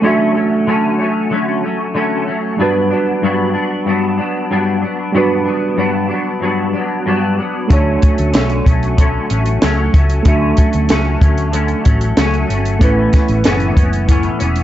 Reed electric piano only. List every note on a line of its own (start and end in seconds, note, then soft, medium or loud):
0.02 2.55 A3 medium
0.02 2.55 D4 medium
0.02 2.56 F#4 medium
0.07 2.57 E5 medium
2.57 5.10 G3 medium
2.57 5.11 D4 medium
2.57 5.12 F#4 medium
2.62 5.13 B4 medium
5.12 7.65 G3 medium
5.12 7.66 D4 medium
5.12 7.67 F#4 medium
5.18 7.68 B4 medium
7.68 10.21 A3 medium
7.68 10.22 D4 medium
7.68 10.22 F#4 medium
7.73 10.23 C#5 medium
10.23 12.76 A3 medium
10.23 12.77 D4 medium
10.23 12.77 F#4 medium
10.28 12.78 E5 medium
12.79 14.63 A3 medium
12.79 14.63 C#4 medium
12.79 14.63 E4 medium
12.84 14.63 B4 medium